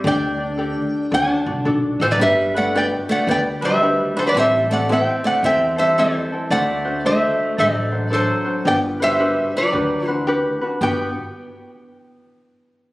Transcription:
0.04 D2 D4 G4 A4 D5
0.08 G5
0.38 D4 G4 D5
0.57 D4 G4 A4 D5
1.11 D2 D4 F#4 A4 D5 F#5 G#5
1.31 A5
1.46 C2 D4 F#4 D5
1.65 B1 D4 F#4 A4 D5
2.00 A1 E3 D4 F#4 A4 C5 D5
2.11 F#3 B4 D5
2.19 G1 G3 D4 F#4 G4 B4
2.23 E5
2.54 A3 D4 F#4 B4 D5 F#5
2.74 B3 D4 F#4 G4 B4 D5 G5
3.09 A3 D5 F#5
3.27 D2 B3 D4 F#4 G4 B4 D5
3.31 G5
3.61 G3 D4 F#4 B4 C5
3.65 E5
3.82 D4 F#4 G4 B4
4.16 E3 D4 F#4 A4 B4 C5
4.26 F#3 B4 D5
4.35 A1 G3 C4 E4 G4 A4 C5
4.40 E5
4.69 A3 C4 E4 A4 D5
4.73 F#5
4.89 C4 E4 G4 A4 E5 G5
5.24 A3 D5 F#5
5.43 E2 C4 E4 G4 A4 E5 G5
5.77 G3 C4 E4 A4 C5 E5
5.97 E3 C4 E4 G4 A4 C5
6.32 C4 E4 A4
6.50 D2 A3 D4 F#4 A4 C5 D5 F#5
6.85 D4 F#4 C5
7.05 A3 D4 F#4 A4 C5 E5
7.58 A1 F#3 D4 F#4 A4 C5 D5
7.92 D4 F#4 C5
8.10 D4 F#4 A4 C5
8.15 F#3
8.45 D4 F#4 C5
8.65 G1 B3 D4 F#4 G4 B4 D5 G5
9.00 G3 D4 F#4 B4 C5 E5
9.19 D4 F#4 G4 B4
9.57 F#3 B4 D5
9.72 D2 D4 F#4 G4 B4
10.06 E3 D4 F#4 B4 C5
10.27 D4 F#4 G4 B4
10.61 D4 F#4 B4
10.81 G1 B3 D4 F#4 G4 B4 G5

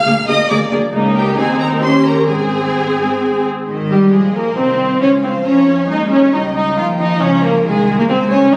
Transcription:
Already playing: F5 F6
0.05 D2 A#3 G#4
0.27 D2 A#3 G#4 D#5 D#6
0.49 D2 A#3 G#4 D5 D6
0.70 D2 A#3 G#4
0.93 C#2 A#3 D#4
1.15 G4 G5
1.37 D#2 C4 D#4 G#4 G#5
1.60 A#4 A#5
1.83 D#2 C#4 G4 C5 C6
2.06 A#4 A#5
2.29 G#1 G#2 C4 G#4 G#5
3.68 G#1 D#3 D#5
3.90 G3 G4
4.12 A#1 F3 G#3 G#4
4.35 A#3 A#4
4.57 C2 D#3 C4 C5
5.01 C#2 F3 C#4 C#5 F5
5.23 C4 C5
5.45 F2 C#4 C#5 A#5
5.67 G#5
5.88 D#2 G#3 D#4 D#5
6.11 C#4 C#5
6.33 C#2 G3 D#4 D#5 G5
6.55 D#4 D#5
6.77 D#2 F3 F4 F5 G5
6.99 D#4 D#5
7.21 C#2 C#4 C#5 A#5
7.43 A#3 A#4
7.65 C2 D#3 G#3 G#4 G#5
7.99 A#3 A#4
8.09 C#2 G#3 C4 C5 G#5
8.31 C#4 C#5
8.52 D#2 G3 D#4 G5

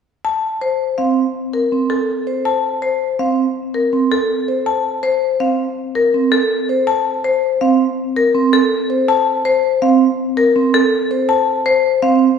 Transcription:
0.25 A5
0.61 C5
0.98 C4 F5
1.53 A#4
1.72 C4
1.90 A4
2.27 C5
2.45 A5
2.82 C5
3.19 C4 F5
3.74 A#4
3.93 C4
4.12 A4
4.48 C5
4.66 A5
5.03 C5
5.40 C4 F5
5.95 A#4
6.14 C4
6.32 A4
6.69 C5
6.87 A5
7.24 C5
7.61 C4 F5
8.16 A#4
8.35 C4
8.53 A4
8.90 C5
9.08 A5
9.45 C5
9.82 C4 F5
10.37 A#4
10.56 C4
10.74 A4
11.11 C5
11.29 A5
11.66 C5
12.02 C4 F5

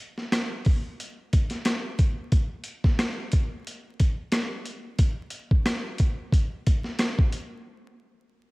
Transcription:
0.18 snare
0.32 cross-stick, snare, closed hi-hat
0.65 kick, open hi-hat
1.00 closed hi-hat
1.33 kick, closed hi-hat
1.50 snare, closed hi-hat
1.65 cross-stick, snare, closed hi-hat
1.99 kick, closed hi-hat
2.32 kick, closed hi-hat
2.64 closed hi-hat
2.84 kick, snare
2.99 cross-stick, snare, closed hi-hat
3.32 kick, closed hi-hat
3.67 closed hi-hat
4.00 kick, closed hi-hat
4.32 cross-stick, snare, closed hi-hat
4.65 closed hi-hat
4.99 kick, closed hi-hat
5.30 closed hi-hat
5.51 kick
5.66 cross-stick, snare, closed hi-hat
5.98 kick, closed hi-hat
6.32 kick, closed hi-hat
6.66 kick, closed hi-hat
6.84 snare
6.99 cross-stick, snare, closed hi-hat
7.19 kick
7.32 closed hi-hat

